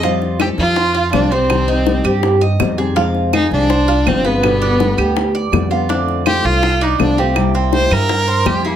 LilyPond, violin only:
\new Staff \with { instrumentName = "Violin" } { \time 4/4 \key f \dorian \tempo 4 = 164 r4 g'8 f'4. d'8 c'8~ | c'2~ c'8 r4. | r4 ees'8 d'4. c'8 b8~ | b2~ b8 r4. |
r4 g'8 f'4 ees'8 d'8 c'8 | r4 c''8 bes'4. g'8 e'8 | }